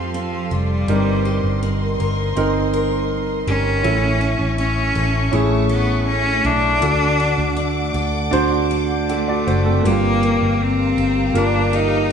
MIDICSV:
0, 0, Header, 1, 6, 480
1, 0, Start_track
1, 0, Key_signature, -2, "minor"
1, 0, Tempo, 741656
1, 573, Time_signature, 4, 2, 24, 8
1, 3933, Tempo, 752823
1, 7787, End_track
2, 0, Start_track
2, 0, Title_t, "String section"
2, 0, Program_c, 0, 48
2, 0, Note_on_c, 0, 69, 56
2, 0, Note_on_c, 0, 77, 54
2, 0, Note_on_c, 0, 84, 68
2, 554, Note_off_c, 0, 69, 0
2, 554, Note_off_c, 0, 77, 0
2, 554, Note_off_c, 0, 84, 0
2, 570, Note_on_c, 0, 70, 67
2, 570, Note_on_c, 0, 75, 59
2, 570, Note_on_c, 0, 84, 71
2, 2469, Note_off_c, 0, 70, 0
2, 2470, Note_off_c, 0, 75, 0
2, 2470, Note_off_c, 0, 84, 0
2, 2485, Note_on_c, 0, 85, 73
2, 2486, Note_on_c, 0, 57, 69
2, 2486, Note_on_c, 0, 76, 60
2, 4388, Note_off_c, 0, 85, 0
2, 4389, Note_off_c, 0, 76, 0
2, 4408, Note_on_c, 0, 78, 63
2, 4410, Note_on_c, 0, 86, 81
2, 6314, Note_off_c, 0, 57, 0
2, 6320, Note_off_c, 0, 78, 0
2, 6322, Note_off_c, 0, 86, 0
2, 6343, Note_on_c, 0, 82, 71
2, 6344, Note_on_c, 0, 77, 63
2, 6345, Note_on_c, 0, 67, 63
2, 7787, Note_off_c, 0, 67, 0
2, 7787, Note_off_c, 0, 77, 0
2, 7787, Note_off_c, 0, 82, 0
2, 7787, End_track
3, 0, Start_track
3, 0, Title_t, "Grand piano"
3, 0, Program_c, 1, 0
3, 0, Control_c, 1, 64, 127
3, 0, Note_on_c, 1, 60, 57
3, 0, Note_on_c, 1, 65, 53
3, 0, Note_on_c, 1, 67, 56
3, 0, Note_on_c, 1, 69, 68
3, 521, Note_off_c, 1, 60, 0
3, 523, Note_off_c, 1, 65, 0
3, 547, Note_off_c, 1, 69, 0
3, 567, Note_on_c, 1, 60, 56
3, 572, Note_on_c, 1, 63, 49
3, 573, Note_on_c, 1, 43, 49
3, 580, Note_on_c, 1, 70, 63
3, 582, Control_c, 1, 64, 0
3, 587, Note_off_c, 1, 67, 0
3, 711, Control_c, 1, 64, 127
3, 1269, Note_off_c, 1, 43, 0
3, 1483, Note_off_c, 1, 60, 0
3, 1485, Note_off_c, 1, 63, 0
3, 1490, Note_off_c, 1, 70, 0
3, 1525, Note_on_c, 1, 60, 66
3, 1532, Note_on_c, 1, 63, 72
3, 1538, Note_on_c, 1, 70, 84
3, 2438, Note_off_c, 1, 60, 0
3, 2441, Note_off_c, 1, 63, 0
3, 2444, Note_off_c, 1, 70, 0
3, 2479, Note_on_c, 1, 61, 54
3, 2484, Note_on_c, 1, 45, 54
3, 2486, Note_on_c, 1, 64, 53
3, 2490, Note_on_c, 1, 69, 61
3, 2498, Control_c, 1, 64, 0
3, 2606, Control_c, 1, 64, 127
3, 3182, Note_off_c, 1, 45, 0
3, 3397, Note_off_c, 1, 61, 0
3, 3400, Note_off_c, 1, 64, 0
3, 3402, Note_off_c, 1, 69, 0
3, 3439, Note_on_c, 1, 61, 65
3, 3446, Note_on_c, 1, 64, 59
3, 3452, Note_on_c, 1, 68, 74
3, 4357, Note_off_c, 1, 61, 0
3, 4360, Note_off_c, 1, 64, 0
3, 4363, Note_off_c, 1, 68, 0
3, 4399, Note_on_c, 1, 62, 63
3, 4403, Note_on_c, 1, 50, 49
3, 4406, Note_on_c, 1, 66, 56
3, 4410, Note_on_c, 1, 69, 69
3, 4417, Control_c, 1, 64, 0
3, 4516, Control_c, 1, 64, 127
3, 5099, Note_off_c, 1, 50, 0
3, 5315, Note_off_c, 1, 62, 0
3, 5319, Note_off_c, 1, 66, 0
3, 5321, Note_off_c, 1, 69, 0
3, 5357, Note_on_c, 1, 62, 85
3, 5362, Note_on_c, 1, 66, 77
3, 5369, Note_on_c, 1, 72, 86
3, 5851, Note_off_c, 1, 62, 0
3, 5854, Note_off_c, 1, 66, 0
3, 5857, Note_off_c, 1, 72, 0
3, 5857, Note_on_c, 1, 78, 59
3, 5860, Note_on_c, 1, 69, 47
3, 5973, Note_off_c, 1, 78, 0
3, 5975, Note_off_c, 1, 69, 0
3, 5976, Note_on_c, 1, 74, 74
3, 5981, Note_on_c, 1, 66, 55
3, 6093, Note_off_c, 1, 74, 0
3, 6096, Note_off_c, 1, 66, 0
3, 6096, Note_on_c, 1, 72, 59
3, 6213, Note_off_c, 1, 72, 0
3, 6216, Note_on_c, 1, 69, 64
3, 6222, Note_on_c, 1, 60, 50
3, 6327, Note_on_c, 1, 58, 65
3, 6334, Note_on_c, 1, 65, 62
3, 6335, Note_on_c, 1, 43, 50
3, 6340, Note_on_c, 1, 67, 62
3, 6349, Control_c, 1, 64, 0
3, 6445, Note_off_c, 1, 69, 0
3, 6449, Note_off_c, 1, 60, 0
3, 6468, Control_c, 1, 64, 127
3, 7030, Note_off_c, 1, 43, 0
3, 7242, Note_off_c, 1, 58, 0
3, 7246, Note_off_c, 1, 65, 0
3, 7249, Note_off_c, 1, 67, 0
3, 7287, Note_on_c, 1, 58, 69
3, 7291, Note_on_c, 1, 65, 62
3, 7297, Note_on_c, 1, 70, 74
3, 7787, Note_off_c, 1, 58, 0
3, 7787, Note_off_c, 1, 65, 0
3, 7787, Note_off_c, 1, 70, 0
3, 7787, End_track
4, 0, Start_track
4, 0, Title_t, "Steel-string acoustic guitar"
4, 0, Program_c, 2, 25
4, 0, Note_on_c, 2, 53, 60
4, 0, Note_on_c, 2, 60, 53
4, 0, Note_on_c, 2, 65, 50
4, 0, Note_on_c, 2, 69, 55
4, 90, Note_off_c, 2, 60, 0
4, 92, Note_on_c, 2, 60, 51
4, 323, Note_off_c, 2, 65, 0
4, 331, Note_on_c, 2, 65, 49
4, 571, Note_off_c, 2, 53, 0
4, 571, Note_on_c, 2, 43, 74
4, 620, Note_off_c, 2, 65, 0
4, 620, Note_off_c, 2, 69, 0
4, 811, Note_on_c, 2, 67, 49
4, 1050, Note_off_c, 2, 60, 0
4, 1053, Note_on_c, 2, 60, 51
4, 1294, Note_on_c, 2, 70, 56
4, 1523, Note_off_c, 2, 60, 0
4, 1531, Note_on_c, 2, 60, 56
4, 1762, Note_off_c, 2, 70, 0
4, 1770, Note_on_c, 2, 70, 59
4, 2010, Note_off_c, 2, 60, 0
4, 2241, Note_off_c, 2, 67, 0
4, 2249, Note_on_c, 2, 67, 55
4, 2485, Note_off_c, 2, 43, 0
4, 2488, Note_on_c, 2, 45, 73
4, 2537, Note_off_c, 2, 67, 0
4, 2537, Note_off_c, 2, 70, 0
4, 2725, Note_on_c, 2, 64, 46
4, 2966, Note_on_c, 2, 61, 55
4, 3206, Note_on_c, 2, 69, 65
4, 3439, Note_off_c, 2, 61, 0
4, 3447, Note_on_c, 2, 61, 61
4, 3683, Note_off_c, 2, 69, 0
4, 3685, Note_on_c, 2, 69, 60
4, 3931, Note_off_c, 2, 61, 0
4, 4160, Note_off_c, 2, 64, 0
4, 4168, Note_on_c, 2, 64, 59
4, 4406, Note_on_c, 2, 50, 82
4, 4409, Note_off_c, 2, 45, 0
4, 4456, Note_off_c, 2, 64, 0
4, 4648, Note_on_c, 2, 66, 55
4, 4882, Note_on_c, 2, 62, 60
4, 5120, Note_off_c, 2, 69, 0
4, 5123, Note_on_c, 2, 69, 66
4, 5365, Note_off_c, 2, 62, 0
4, 5368, Note_on_c, 2, 62, 64
4, 5603, Note_off_c, 2, 69, 0
4, 5611, Note_on_c, 2, 69, 65
4, 5854, Note_off_c, 2, 62, 0
4, 5856, Note_on_c, 2, 62, 62
4, 6092, Note_off_c, 2, 66, 0
4, 6100, Note_on_c, 2, 66, 59
4, 6341, Note_on_c, 2, 43, 69
4, 6343, Note_off_c, 2, 69, 0
4, 6345, Note_on_c, 2, 67, 61
4, 6388, Note_off_c, 2, 66, 0
4, 6578, Note_off_c, 2, 62, 0
4, 6580, Note_on_c, 2, 58, 51
4, 6638, Note_off_c, 2, 50, 0
4, 7056, Note_off_c, 2, 67, 0
4, 7059, Note_on_c, 2, 67, 57
4, 7295, Note_off_c, 2, 58, 0
4, 7298, Note_on_c, 2, 58, 62
4, 7535, Note_off_c, 2, 67, 0
4, 7538, Note_on_c, 2, 67, 59
4, 7787, Note_off_c, 2, 43, 0
4, 7787, Note_off_c, 2, 58, 0
4, 7787, Note_off_c, 2, 67, 0
4, 7787, End_track
5, 0, Start_track
5, 0, Title_t, "Cello"
5, 0, Program_c, 3, 42
5, 0, Note_on_c, 3, 53, 65
5, 97, Note_off_c, 3, 53, 0
5, 103, Note_on_c, 3, 53, 74
5, 339, Note_on_c, 3, 55, 87
5, 349, Note_off_c, 3, 53, 0
5, 1297, Note_off_c, 3, 55, 0
5, 2253, Note_on_c, 3, 61, 93
5, 2946, Note_off_c, 3, 61, 0
5, 2968, Note_on_c, 3, 61, 87
5, 3448, Note_on_c, 3, 57, 78
5, 3458, Note_off_c, 3, 61, 0
5, 3689, Note_off_c, 3, 57, 0
5, 3695, Note_on_c, 3, 59, 85
5, 3918, Note_off_c, 3, 59, 0
5, 3934, Note_on_c, 3, 61, 102
5, 4177, Note_on_c, 3, 62, 114
5, 4187, Note_off_c, 3, 61, 0
5, 5130, Note_off_c, 3, 62, 0
5, 5870, Note_on_c, 3, 57, 85
5, 6349, Note_on_c, 3, 58, 93
5, 6358, Note_off_c, 3, 57, 0
5, 6828, Note_on_c, 3, 60, 91
5, 6838, Note_off_c, 3, 58, 0
5, 7309, Note_on_c, 3, 62, 89
5, 7318, Note_off_c, 3, 60, 0
5, 7545, Note_on_c, 3, 63, 91
5, 7555, Note_off_c, 3, 62, 0
5, 7787, Note_off_c, 3, 63, 0
5, 7787, End_track
6, 0, Start_track
6, 0, Title_t, "Fingered electric bass"
6, 0, Program_c, 4, 33
6, 0, Note_on_c, 4, 41, 89
6, 307, Note_off_c, 4, 41, 0
6, 332, Note_on_c, 4, 29, 84
6, 555, Note_off_c, 4, 29, 0
6, 570, Note_on_c, 4, 31, 96
6, 906, Note_off_c, 4, 31, 0
6, 930, Note_on_c, 4, 31, 78
6, 1267, Note_off_c, 4, 31, 0
6, 1293, Note_on_c, 4, 31, 80
6, 1516, Note_off_c, 4, 31, 0
6, 1533, Note_on_c, 4, 31, 96
6, 2224, Note_off_c, 4, 31, 0
6, 2247, Note_on_c, 4, 31, 88
6, 2471, Note_off_c, 4, 31, 0
6, 2483, Note_on_c, 4, 33, 102
6, 2821, Note_off_c, 4, 33, 0
6, 2844, Note_on_c, 4, 33, 86
6, 3182, Note_off_c, 4, 33, 0
6, 3208, Note_on_c, 4, 33, 89
6, 3432, Note_off_c, 4, 33, 0
6, 3449, Note_on_c, 4, 33, 101
6, 4145, Note_off_c, 4, 33, 0
6, 4168, Note_on_c, 4, 35, 93
6, 4392, Note_off_c, 4, 35, 0
6, 4405, Note_on_c, 4, 38, 101
6, 4740, Note_off_c, 4, 38, 0
6, 4764, Note_on_c, 4, 38, 95
6, 5100, Note_off_c, 4, 38, 0
6, 5122, Note_on_c, 4, 38, 96
6, 5350, Note_off_c, 4, 38, 0
6, 5365, Note_on_c, 4, 38, 105
6, 6073, Note_off_c, 4, 38, 0
6, 6097, Note_on_c, 4, 30, 89
6, 6322, Note_off_c, 4, 30, 0
6, 6339, Note_on_c, 4, 31, 90
6, 6673, Note_off_c, 4, 31, 0
6, 6695, Note_on_c, 4, 31, 89
6, 7031, Note_off_c, 4, 31, 0
6, 7054, Note_on_c, 4, 31, 93
6, 7278, Note_off_c, 4, 31, 0
6, 7290, Note_on_c, 4, 31, 93
6, 7787, Note_off_c, 4, 31, 0
6, 7787, End_track
0, 0, End_of_file